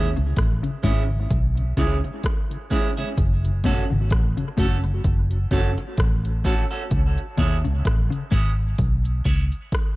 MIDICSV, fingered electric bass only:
0, 0, Header, 1, 2, 480
1, 0, Start_track
1, 0, Key_signature, 4, "minor"
1, 0, Tempo, 935454
1, 1627, Time_signature, 4, 2, 24, 8
1, 5112, End_track
2, 0, Start_track
2, 0, Title_t, "Fingered electric bass"
2, 0, Program_c, 0, 33
2, 0, Note_on_c, 0, 39, 84
2, 71, Note_off_c, 0, 39, 0
2, 91, Note_on_c, 0, 37, 86
2, 180, Note_off_c, 0, 37, 0
2, 191, Note_on_c, 0, 33, 94
2, 312, Note_off_c, 0, 33, 0
2, 431, Note_on_c, 0, 32, 90
2, 645, Note_off_c, 0, 32, 0
2, 672, Note_on_c, 0, 35, 100
2, 885, Note_off_c, 0, 35, 0
2, 912, Note_on_c, 0, 37, 90
2, 1032, Note_off_c, 0, 37, 0
2, 1632, Note_on_c, 0, 30, 92
2, 1968, Note_off_c, 0, 30, 0
2, 2013, Note_on_c, 0, 32, 87
2, 2102, Note_off_c, 0, 32, 0
2, 2112, Note_on_c, 0, 33, 97
2, 2232, Note_off_c, 0, 33, 0
2, 2351, Note_on_c, 0, 30, 93
2, 2564, Note_off_c, 0, 30, 0
2, 2591, Note_on_c, 0, 30, 101
2, 2805, Note_off_c, 0, 30, 0
2, 2831, Note_on_c, 0, 30, 98
2, 2952, Note_off_c, 0, 30, 0
2, 3071, Note_on_c, 0, 33, 94
2, 3407, Note_off_c, 0, 33, 0
2, 3551, Note_on_c, 0, 37, 104
2, 3672, Note_off_c, 0, 37, 0
2, 3789, Note_on_c, 0, 39, 92
2, 3911, Note_off_c, 0, 39, 0
2, 3932, Note_on_c, 0, 37, 84
2, 4021, Note_off_c, 0, 37, 0
2, 4033, Note_on_c, 0, 33, 93
2, 4153, Note_off_c, 0, 33, 0
2, 4270, Note_on_c, 0, 32, 82
2, 4484, Note_off_c, 0, 32, 0
2, 4511, Note_on_c, 0, 35, 97
2, 4725, Note_off_c, 0, 35, 0
2, 4751, Note_on_c, 0, 37, 89
2, 4872, Note_off_c, 0, 37, 0
2, 5112, End_track
0, 0, End_of_file